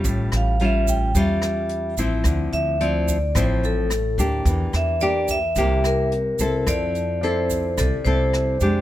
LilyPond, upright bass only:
\new Staff \with { instrumentName = "Upright bass" } { \clef bass \time 4/4 \key d \minor \tempo 4 = 109 a,,8 a,,4. e,4. a,,8 | d,8 d,4. a,,4. d,8 | e,8 e,4. c,4. c,8 | \key f \major f,2 c,16 r16 c,4 f,8 | }